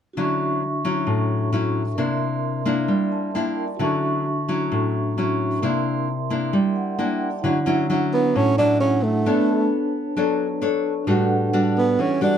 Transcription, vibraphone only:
0, 0, Header, 1, 2, 480
1, 0, Start_track
1, 0, Key_signature, 2, "major"
1, 0, Tempo, 454545
1, 168, Time_signature, 4, 2, 24, 8
1, 13072, End_track
2, 0, Start_track
2, 0, Title_t, "Vibraphone"
2, 0, Program_c, 0, 11
2, 142, Note_on_c, 0, 66, 49
2, 161, Note_on_c, 0, 62, 41
2, 183, Note_on_c, 0, 76, 43
2, 207, Note_on_c, 0, 85, 55
2, 374, Control_c, 0, 64, 127
2, 2038, Note_off_c, 0, 66, 0
2, 2048, Note_off_c, 0, 62, 0
2, 2059, Note_off_c, 0, 76, 0
2, 2062, Note_on_c, 0, 70, 50
2, 2071, Note_off_c, 0, 85, 0
2, 2083, Note_on_c, 0, 74, 47
2, 2103, Note_on_c, 0, 76, 49
2, 2104, Control_c, 0, 64, 0
2, 2124, Note_on_c, 0, 84, 54
2, 2296, Control_c, 0, 64, 127
2, 3295, Note_on_c, 0, 81, 48
2, 3516, Note_off_c, 0, 81, 0
2, 3538, Note_on_c, 0, 79, 44
2, 3723, Note_off_c, 0, 70, 0
2, 3734, Note_off_c, 0, 74, 0
2, 3745, Note_off_c, 0, 76, 0
2, 3755, Note_off_c, 0, 84, 0
2, 3762, Note_on_c, 0, 70, 42
2, 3772, Note_on_c, 0, 74, 36
2, 3784, Note_on_c, 0, 76, 34
2, 3793, Note_on_c, 0, 81, 40
2, 3977, Note_on_c, 0, 66, 51
2, 3981, Note_off_c, 0, 79, 0
2, 3998, Note_on_c, 0, 62, 45
2, 4006, Note_off_c, 0, 76, 0
2, 4007, Note_off_c, 0, 70, 0
2, 4012, Note_off_c, 0, 74, 0
2, 4019, Note_on_c, 0, 76, 43
2, 4022, Note_off_c, 0, 81, 0
2, 4027, Control_c, 0, 64, 0
2, 4040, Note_on_c, 0, 85, 57
2, 4183, Control_c, 0, 64, 127
2, 5406, Note_off_c, 0, 66, 0
2, 5417, Note_off_c, 0, 62, 0
2, 5427, Note_off_c, 0, 76, 0
2, 5438, Note_off_c, 0, 85, 0
2, 5443, Note_on_c, 0, 66, 35
2, 5454, Note_on_c, 0, 62, 32
2, 5463, Note_on_c, 0, 76, 34
2, 5475, Note_on_c, 0, 85, 42
2, 5904, Note_on_c, 0, 70, 48
2, 5926, Note_on_c, 0, 74, 45
2, 5928, Note_off_c, 0, 66, 0
2, 5933, Note_off_c, 0, 62, 0
2, 5934, Note_off_c, 0, 76, 0
2, 5944, Note_off_c, 0, 85, 0
2, 5945, Control_c, 0, 64, 0
2, 5946, Note_on_c, 0, 76, 45
2, 5966, Note_on_c, 0, 84, 54
2, 6166, Control_c, 0, 64, 127
2, 7135, Note_on_c, 0, 78, 48
2, 7357, Note_off_c, 0, 78, 0
2, 7382, Note_on_c, 0, 79, 45
2, 7601, Note_off_c, 0, 79, 0
2, 7617, Note_on_c, 0, 81, 43
2, 7800, Note_off_c, 0, 70, 0
2, 7811, Note_off_c, 0, 74, 0
2, 7821, Note_off_c, 0, 76, 0
2, 7831, Note_off_c, 0, 84, 0
2, 7831, Note_on_c, 0, 64, 55
2, 7838, Note_off_c, 0, 81, 0
2, 7850, Note_on_c, 0, 73, 49
2, 7864, Control_c, 0, 64, 0
2, 7869, Note_on_c, 0, 62, 48
2, 7894, Note_on_c, 0, 78, 57
2, 8049, Control_c, 0, 64, 127
2, 9252, Note_off_c, 0, 64, 0
2, 9262, Note_off_c, 0, 73, 0
2, 9272, Note_off_c, 0, 62, 0
2, 9284, Note_off_c, 0, 78, 0
2, 9310, Note_on_c, 0, 62, 32
2, 9322, Note_on_c, 0, 78, 37
2, 9739, Note_off_c, 0, 62, 0
2, 9752, Note_on_c, 0, 62, 45
2, 9771, Note_on_c, 0, 71, 41
2, 9785, Control_c, 0, 64, 0
2, 9787, Note_off_c, 0, 78, 0
2, 9792, Note_on_c, 0, 73, 43
2, 9816, Note_on_c, 0, 81, 51
2, 9966, Control_c, 0, 64, 127
2, 11642, Note_off_c, 0, 62, 0
2, 11653, Note_off_c, 0, 71, 0
2, 11663, Note_off_c, 0, 73, 0
2, 11663, Note_on_c, 0, 62, 54
2, 11675, Note_off_c, 0, 81, 0
2, 11695, Note_on_c, 0, 69, 49
2, 11705, Control_c, 0, 64, 0
2, 11715, Note_on_c, 0, 71, 48
2, 11728, Note_on_c, 0, 78, 62
2, 11896, Control_c, 0, 64, 127
2, 12852, Note_off_c, 0, 62, 0
2, 12868, Note_off_c, 0, 69, 0
2, 12879, Note_off_c, 0, 71, 0
2, 12882, Note_on_c, 0, 62, 35
2, 12886, Note_off_c, 0, 78, 0
2, 12902, Note_on_c, 0, 69, 30
2, 12907, Note_on_c, 0, 71, 32
2, 12918, Note_on_c, 0, 78, 36
2, 13072, Note_off_c, 0, 62, 0
2, 13072, Note_off_c, 0, 69, 0
2, 13072, Note_off_c, 0, 71, 0
2, 13072, Note_off_c, 0, 78, 0
2, 13072, End_track
0, 0, End_of_file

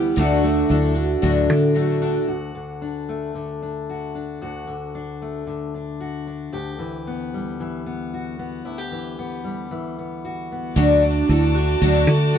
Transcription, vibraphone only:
0, 0, Header, 1, 2, 480
1, 0, Start_track
1, 0, Key_signature, 2, "major"
1, 0, Tempo, 529101
1, 163, Time_signature, 4, 2, 24, 8
1, 11232, End_track
2, 0, Start_track
2, 0, Title_t, "Vibraphone"
2, 0, Program_c, 0, 11
2, 0, Note_on_c, 0, 64, 76
2, 161, Note_off_c, 0, 64, 0
2, 161, Note_on_c, 0, 62, 89
2, 631, Note_off_c, 0, 62, 0
2, 645, Note_on_c, 0, 64, 76
2, 878, Note_off_c, 0, 64, 0
2, 884, Note_on_c, 0, 66, 72
2, 1351, Note_off_c, 0, 66, 0
2, 1362, Note_on_c, 0, 69, 69
2, 1596, Note_off_c, 0, 69, 0
2, 1600, Note_on_c, 0, 66, 80
2, 1820, Note_off_c, 0, 66, 0
2, 1831, Note_on_c, 0, 66, 74
2, 2070, Note_off_c, 0, 66, 0
2, 9768, Note_on_c, 0, 62, 89
2, 10237, Note_off_c, 0, 62, 0
2, 10247, Note_on_c, 0, 64, 83
2, 10479, Note_on_c, 0, 66, 82
2, 10481, Note_off_c, 0, 64, 0
2, 10950, Note_off_c, 0, 66, 0
2, 10956, Note_on_c, 0, 69, 79
2, 11193, Note_off_c, 0, 69, 0
2, 11194, Note_on_c, 0, 66, 87
2, 11232, Note_off_c, 0, 66, 0
2, 11232, End_track
0, 0, End_of_file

